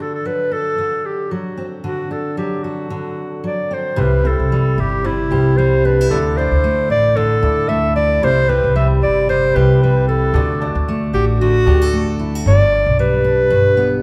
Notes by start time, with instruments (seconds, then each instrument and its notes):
Already playing: steel-string acoustic guitar D3
0.00 steel-string acoustic guitar D4, clarinet A4
0.15 clarinet A4
0.25 steel-string acoustic guitar F#3, clarinet B4
0.51 steel-string acoustic guitar A4, clarinet A4
0.78 steel-string acoustic guitar D3
1.06 clarinet G4
1.31 steel-string acoustic guitar F#3, clarinet F#4
1.57 steel-string acoustic guitar C4
1.84 steel-string acoustic guitar D3, clarinet F#4
2.11 steel-string acoustic guitar D4, clarinet A4
2.37 steel-string acoustic guitar F#3, clarinet G4
2.64 clarinet F#4, steel-string acoustic guitar A4
2.90 steel-string acoustic guitar D3
3.44 steel-string acoustic guitar F#3, clarinet D5
3.71 steel-string acoustic guitar C4, clarinet C5
3.96 upright bass C2, steel-string acoustic guitar C3, grand piano G3 E4 C5, clarinet B4
4.23 grand piano G3 E4 C5, steel-string acoustic guitar C4
4.27 clarinet A4
4.40 upright bass C2
4.52 steel-string acoustic guitar G3
4.78 upright bass G1, steel-string acoustic guitar E4, clarinet G4
5.04 steel-string acoustic guitar C3, clarinet E4
5.30 upright bass C2, grand piano G3 E4 C5, steel-string acoustic guitar G4
5.58 steel-string acoustic guitar G3, clarinet C5
5.85 steel-string acoustic guitar D4, clarinet B4
6.01 steel-string acoustic guitar E4
6.09 upright bass D2, steel-string acoustic guitar D3, grand piano A3 E4 D5, clarinet A4
6.35 grand piano A3 E4 D5, steel-string acoustic guitar D4, clarinet C5
6.52 upright bass D2
6.64 steel-string acoustic guitar A3
6.89 upright bass A1, steel-string acoustic guitar E4, clarinet D5
7.17 steel-string acoustic guitar D3, clarinet A4
7.42 upright bass D2, grand piano A3 E4 D5, steel-string acoustic guitar A4
7.69 steel-string acoustic guitar A3, clarinet E5
7.96 steel-string acoustic guitar E4, clarinet D5
8.21 upright bass C2, steel-string acoustic guitar C3, grand piano G3 E4 C5, clarinet C5
8.47 grand piano G3 E4 G4, steel-string acoustic guitar C4, clarinet B4
8.64 upright bass C2
8.76 steel-string acoustic guitar G3, clarinet E5
9.02 upright bass G1, steel-string acoustic guitar E4, clarinet D5
9.29 steel-string acoustic guitar C3, clarinet C5
9.53 upright bass C2, grand piano G3 E4 C5, steel-string acoustic guitar G4, clarinet B4
9.83 steel-string acoustic guitar G3, clarinet B4
10.08 steel-string acoustic guitar E4, clarinet A4
10.33 upright bass D2, steel-string acoustic guitar D3, grand piano A3 F#4 D5
10.60 grand piano A3 F#4 D5, steel-string acoustic guitar D4
10.75 upright bass D2
10.88 steel-string acoustic guitar A3
11.13 upright bass A1, steel-string acoustic guitar F#4, clarinet G4
11.41 steel-string acoustic guitar D3, clarinet F#4
11.65 upright bass D2, grand piano A3 F#4 D5, steel-string acoustic guitar G4
11.82 steel-string acoustic guitar A4
11.93 steel-string acoustic guitar A3
12.19 steel-string acoustic guitar E4
12.35 steel-string acoustic guitar F#4
12.46 upright bass G1, steel-string acoustic guitar G2, clarinet D5
12.86 upright bass B1
12.99 steel-string acoustic guitar G3, clarinet B4
13.24 steel-string acoustic guitar D4
13.50 steel-string acoustic guitar G2
13.77 steel-string acoustic guitar B3